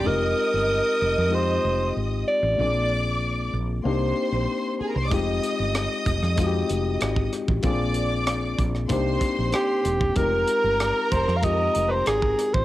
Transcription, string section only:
X:1
M:4/4
L:1/16
Q:1/4=95
K:Fdor
V:1 name="String section"
[ee']12- [ee']2 z2 | [dd']6 z2 [cc']4- [cc']3/2 z/2 [Aa]/2 [Bb]/2 [cc']/2 [dd']/2 | [ee']12- [ee']2 z2 | [dd']6 z2 [cc']6 z2 |
[Bb]12- [Bb]2 z2 |]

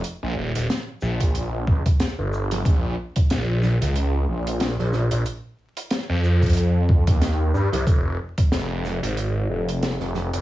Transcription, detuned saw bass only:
X:1
M:4/4
L:1/16
Q:"Swing 16ths" 1/4=92
K:Bbdor
V:1 name="Detuned saw bass" clef=bass
z B,,, E,,, E,,, z2 B,,,4 D,, z2 G,,,3 | B,,,2 z2 B,,,3 D,,3 B,,,3 B,,,2 B,,, | z4 z F,,6 E,,3 G,, C,, | F,,,2 z2 F,,,3 A,,,3 F,,,3 F,,,2 F,,, |]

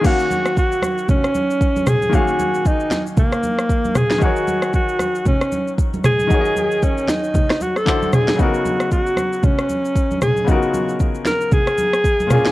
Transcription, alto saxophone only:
X:1
M:4/4
L:1/16
Q:"Swing 16ths" 1/4=115
K:Ebm
V:1 name="Alto saxophone"
G4 G4 D6 A2 | G4 E4 B,6 A2 | G4 G4 D4 z2 A2- | A4 D2 E4 G =A3 _A2 |
G4 G4 D6 A2 | G4 z2 B2 A6 A2 |]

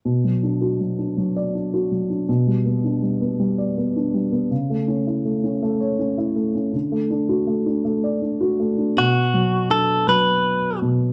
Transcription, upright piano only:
X:1
M:6/8
L:1/16
Q:3/8=54
K:Bm
V:1 name="Upright piano"
B,, F, D F F, D F, d D F F, D | B,, G, B, D G, B, G, d B, D G, B, | C, A, C E A, C A, c C E A, C | D, A, D F A, D A, d D F A, D |
B,,2 F,2 D2 F,4 B,,2 |]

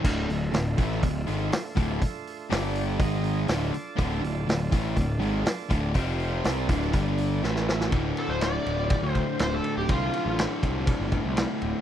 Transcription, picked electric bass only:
X:1
M:4/4
L:1/16
Q:1/4=122
K:Dm
V:1 name="Picked electric bass" clef=bass
D,,,2 D,,,2 D,,,2 A,,,2 D,,,2 ^G,,,2 z2 D,,,2 | z4 G,,,4 ^G,,,4 D,,,2 z2 | D,,,2 D,,,2 D,,,2 A,,,2 D,,,2 ^G,,,2 z2 D,,,2 | F,,,4 C,,2 D,,,2 G,,,4 A,,,4 |
D,,,2 z D,,,3 D,,,3 D,,2 z D,,,2 z D,,, | C,,2 z A,,,2 z C,,3 G,,,2 C,,2 z D,,, z |]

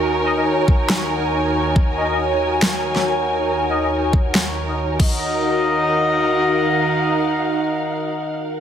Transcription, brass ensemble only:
X:1
M:4/4
L:1/16
Q:"Swing 16ths" 1/4=139
K:Ebm
V:1 name="Brass ensemble"
z2 [EBe] [EBe] z12 | z2 [EBe] [EBe] z12 | z2 [EBe] [EBe] z6 z [EBe] z2 [EBe]2- | [EBe]16- |
[EBe]16 |]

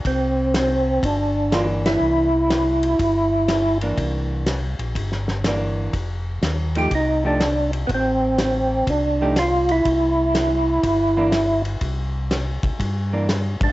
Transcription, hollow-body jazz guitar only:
X:1
M:4/4
L:1/8
Q:"Swing" 1/4=122
K:Cmix
V:1 name="Hollow-body jazz guitar"
z6 [E,B,D]2- | [E,B,D] z6 [E,B,D]- | [E,B,D]2 z4 [E,B,D]2 | z3 [F,A,_EG] z [F,A,EG] z2 |
z4 z [F,A,_EG] z2 | z4 z [E,B,D] z2 | z4 z [E,B,D] z2 |]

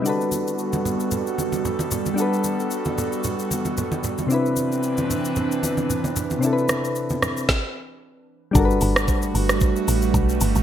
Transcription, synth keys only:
X:1
M:4/4
L:1/8
Q:"Swing 16ths" 1/4=113
K:G
V:1 name="Synth keys"
[G,DFAB]8 | [G,DFAB]8 | [C,CDEB]8 | [C,CDEAB]4 z4 |
[G,DFA_B=B]8 |]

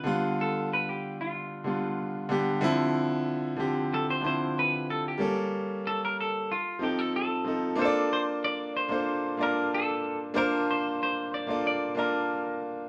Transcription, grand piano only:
X:1
M:4/4
L:1/16
Q:1/4=93
K:Ddor
V:1 name="Grand piano"
[D,G,B,F]4- [D,G,B,F] z4 z [D,G,B,F]2 z2 [D,G,B,G] z | [D,F,CE]4 z2 [D,F,CG]2 z2 [D,F,CE]4 z2 | [G,_B,^CA]4- [G,B,CA] z4 z [F,=C_EA]2 z2 [F,CEA] z | [K:Bblyd] [B,DFAcd]4 z3 [B,DFAc]2 z [B,DFda]4 z2 |
[B,DFca]4 z3 [B,DFAd]2 z [B,DFda]4 z2 |]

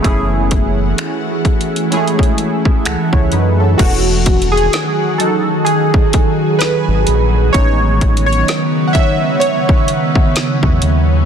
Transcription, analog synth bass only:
X:1
M:4/4
L:1/16
Q:"Swing 16ths" 1/4=64
K:E
V:1 name="Analog synth bass" clef=bass
F,,,4 z8 C,, C,, F,,2 | E,,,4 z8 z G,,, ^A,,,2 | A,,,4 z8 z E,, D,,2 |]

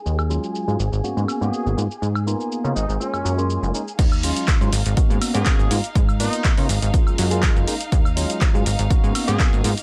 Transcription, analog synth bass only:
X:1
M:4/4
L:1/16
Q:1/4=122
K:G#dor
V:1 name="Analog synth bass" clef=bass
D,,3 z2 G,, G,,, G,,, G,, G,, z G,, z G,,, G,, z | G,,3 z2 C, G,,, G,,, z F,, F,,3 F,,, z2 | D,,3 z2 G,, G,,, G,,, z G,, z G,, z G,,, G,, z | G,,3 z2 C, G,,, G,,, z F,, F,,3 F,,, z2 |
D,,3 z2 G,, G,,, G,,, z G,, z G,, z G,,, G,, z |]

